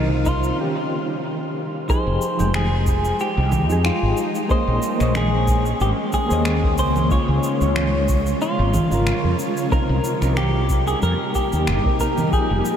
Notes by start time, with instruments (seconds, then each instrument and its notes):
Already playing: fretless electric bass C2, ambient pad C3 D#3 G3 A#3 D#4, synth keys C3 C4 D#4 A#4, clean electric guitar D#4, synth texture F5 F6
0.26 clean electric guitar F4, kick, shaker
0.44 shaker
0.56 synth keys D#3 C#4 F4
0.61 synth keys G4
1.88 synth keys F3 D#4 G4 G#4, ambient pad F3 G#3 D#4, clean electric guitar C5, kick, shaker
2.07 fretless electric bass F1
2.22 shaker
2.37 fretless electric bass F1, synth keys F3 D#4 G5, shaker
2.42 synth keys G#3
2.54 clean electric guitar G#4, finger snap, low conga, shaker
2.87 kick, shaker
3.05 shaker
3.20 clean electric guitar G4, shaker
3.37 fretless electric bass C2
3.52 kick, low conga, shaker
3.67 fretless electric bass F2, synth keys F3 D#4 G4, shaker
3.72 synth keys G#4
3.85 clean electric guitar F4, finger snap, shaker
4.02 fretless electric bass G#1
4.17 shaker
4.35 shaker
4.48 ambient pad D#3 A#3 C#4, synth keys A#3 C#4 G#4 C5 D#5, clean electric guitar C5, kick, shaker
4.67 fretless electric bass A#1
4.82 shaker
4.97 fretless electric bass A#1, synth keys G#3 A#3 C5 C#5, finger snap, shaker
5.02 synth keys D#5
5.15 clean electric guitar G#4, finger snap, low conga, shaker
5.48 kick, shaker
5.66 shaker
5.80 fretless electric bass G#1, clean electric guitar G4, shaker
6.13 clean electric guitar G#4, kick, shaker
6.28 fretless electric bass D#2, synth keys A#3 G#4 C5, shaker
6.32 synth keys C#5 D#5
6.45 finger snap, shaker
6.63 kick
6.78 fretless electric bass C#2, clean electric guitar C5, kick, shaker
6.96 low conga, shaker
7.09 synth keys C#3 C#4 F4 C#5, ambient pad C#3 F3 F4 C#5, clean electric guitar C#5, kick, shaker
7.28 fretless electric bass C#2
7.43 shaker
7.59 fretless electric bass C#2, synth keys C#3 C#4 F4, shaker
7.64 synth keys C#5
7.76 finger snap, low conga, shaker
8.09 kick, shaker
8.26 shaker
8.41 clean electric guitar F4, shaker
8.59 fretless electric bass G#1
8.74 kick, low conga, shaker
8.89 fretless electric bass G#1, synth keys C#3 C#4 F4, shaker
8.94 synth keys A#4
9.07 finger snap, shaker
9.24 fretless electric bass F2
9.39 shaker
9.57 shaker
9.70 ambient pad A#2 G3 A#3 D#4 G4, synth keys C3 C4 D#4 A#4, clean electric guitar A#4, kick, shaker
9.89 fretless electric bass C2
10.04 shaker
10.19 fretless electric bass C2, synth keys C3 C4 D#4, finger snap, shaker
10.25 synth keys A#4
10.37 clean electric guitar G4, finger snap, low conga, shaker
10.70 kick, shaker
10.87 clean electric guitar G#4, shaker
11.02 fretless electric bass F2, clean electric guitar A#4, shaker
11.35 clean electric guitar G4, kick, shaker
11.53 fretless electric bass D#2, shaker
11.67 fretless electric bass G1, finger snap, shaker
11.84 synth keys C3 C4 D#4 A#4, kick
12.00 clean electric guitar A#4, kick, shaker
12.18 low conga, shaker
12.32 synth keys F3 D#4 G#4 G5, ambient pad F3 G#3 G5, clean electric guitar G#4, synth texture F5 F6, kick, shaker
12.50 fretless electric bass F1
12.65 shaker